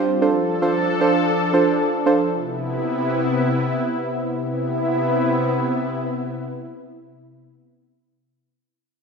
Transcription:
0.00 0.20 G3 medium
0.00 0.18 C4 medium
0.00 0.18 D4 medium
0.00 0.18 F4 medium
0.00 0.20 F4 medium
0.00 0.18 G4 medium
0.00 0.18 C5 loud
0.22 2.30 F3 medium
0.22 0.55 D4 medium
0.22 2.30 D4 medium
0.22 0.55 F4 medium
0.22 0.55 A4 medium
0.22 2.30 A4 loud
0.22 0.55 C5 medium
0.62 0.95 D4 medium
0.62 0.95 F4 medium
0.62 0.95 A4 medium
0.62 0.95 C5 loud
1.01 1.45 D4 medium
1.01 1.45 F4 medium
1.01 1.45 A4 medium
1.01 1.45 C5 loud
1.53 1.98 D4 medium
1.53 1.98 F4 medium
1.53 1.98 A4 medium
1.53 1.98 C5 loud
2.06 2.28 D4 medium
2.06 2.28 F4 medium
2.06 2.28 A4 medium
2.06 2.29 C5 loud
2.33 4.41 C3 medium
2.33 4.41 B3 medium
2.33 4.41 E4 medium
4.43 7.47 C3 medium
4.43 7.47 B3 medium
4.43 7.47 E4 medium

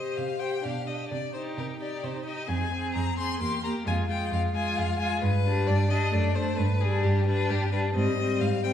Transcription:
0.00 0.10 C3 medium
0.00 0.40 G4 soft
0.00 0.40 C5 soft
0.00 0.19 D#5 medium
0.17 0.57 C3 medium
0.17 0.41 F5 medium
0.40 0.63 G4 soft
0.40 0.64 C5 soft
0.40 0.65 G5 medium
0.63 1.04 B2 soft
0.63 0.87 D4 soft
0.63 0.88 G4 soft
0.63 0.88 F5 medium
0.87 1.11 D4 soft
0.87 1.11 G4 soft
0.87 1.09 D#5 medium
1.09 1.50 C3 medium
1.09 1.33 D5 medium
1.34 1.79 D#4 soft
1.34 1.80 G4 soft
1.34 1.42 C5 medium
1.57 1.95 C3 medium
1.57 1.66 A#4 medium
1.80 2.25 D#4 soft
1.80 2.25 G4 soft
1.80 2.05 D5 medium
2.03 2.41 C3 soft
2.03 2.25 C5 medium
2.25 2.49 D#4 soft
2.25 2.48 G4 soft
2.25 2.50 D#5 medium
2.48 2.87 F2 medium
2.48 2.72 C4 soft
2.48 2.71 G#4 soft
2.48 2.94 G#5 medium
2.72 3.17 C4 soft
2.72 3.17 G#4 soft
2.95 3.34 F2 medium
2.95 3.17 A#5 medium
3.19 3.41 C4 soft
3.19 3.41 G#4 soft
3.19 3.39 C6 medium
3.40 3.79 E2 medium
3.40 3.64 A#3 soft
3.40 3.64 G4 soft
3.40 3.63 C6 medium
3.64 3.87 A#3 soft
3.64 3.87 G4 soft
3.64 3.72 A#5 medium
3.86 4.25 F2 medium
3.86 4.09 G#3 soft
3.86 4.08 F4 soft
3.86 3.95 G#5 medium
4.09 4.55 G#3 soft
4.09 4.54 F4 soft
4.09 4.32 G5 medium
4.32 4.70 F2 medium
4.32 4.41 F5 medium
4.55 4.99 G#3 soft
4.55 4.99 F4 medium
4.55 4.78 G#5 medium
4.77 5.15 F2 medium
4.77 4.99 F5 medium
4.99 5.22 G#3 soft
4.99 5.23 F4 medium
4.99 5.22 G#5 medium
5.22 5.61 G2 medium
5.22 5.68 B4 medium
5.45 5.91 G3 medium
5.45 5.90 D4 medium
5.67 6.07 G2 medium
5.67 5.92 D5 medium
5.90 6.13 G3 medium
5.90 6.13 D4 medium
5.90 6.15 D#5 medium
6.13 6.51 F#2 medium
6.13 6.36 A3 medium
6.13 6.36 D4 medium
6.13 6.36 D5 medium
6.35 6.59 A3 medium
6.35 6.58 D4 medium
6.35 6.59 C5 medium
6.57 6.96 G2 medium
6.57 6.82 B4 medium
6.81 7.26 G3 medium
6.81 7.26 D4 medium
6.81 7.05 G#4 medium
7.03 7.42 G2 medium
7.03 7.26 G4 medium
7.26 7.72 G3 medium
7.26 7.71 D4 medium
7.26 7.52 B4 medium
7.50 7.88 G2 medium
7.50 7.71 G4 medium
7.72 7.94 G3 soft
7.72 7.94 D4 soft
7.72 7.80 B4 medium
7.95 8.33 G#2 medium
7.95 8.17 G3 medium
7.95 8.16 C4 medium
7.95 8.42 D#5 medium
8.17 8.63 G3 medium
8.17 8.62 C4 soft
8.40 8.73 G#2 medium
8.40 8.63 F5 medium
8.64 8.73 G3 soft
8.64 8.73 C4 soft
8.64 8.72 G5 medium

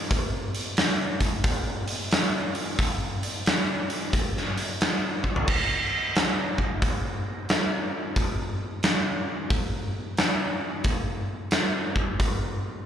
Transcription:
0.11 kick loud
0.11 open hi-hat medium
0.55 open hi-hat medium
0.77 snare loud
0.77 open hi-hat medium
1.20 kick medium
1.20 open hi-hat medium
1.44 kick loud
1.44 open hi-hat medium
1.88 open hi-hat medium
2.11 snare loud
2.11 open hi-hat medium
2.55 open hi-hat medium
2.79 kick loud
2.79 open hi-hat medium
3.23 open hi-hat medium
3.46 snare loud
3.46 open hi-hat medium
3.90 open hi-hat medium
4.13 kick loud
4.13 open hi-hat medium
4.37 snare soft
4.58 open hi-hat medium
4.81 snare loud
4.81 open hi-hat medium
5.24 kick medium
5.36 floor tom medium
5.48 kick medium
5.48 crash loud
6.15 snare loud
6.15 open hi-hat medium
6.58 kick medium
6.82 kick loud
6.82 open hi-hat medium
7.49 snare loud
7.49 open hi-hat medium
8.16 kick medium
8.16 open hi-hat soft
8.83 snare loud
8.83 open hi-hat medium
9.50 kick loud
9.50 open hi-hat soft
10.17 snare loud
10.17 open hi-hat soft
10.84 kick loud
10.84 open hi-hat soft
11.51 snare loud
11.51 open hi-hat soft
11.96 kick medium
12.20 kick loud
12.20 open hi-hat medium

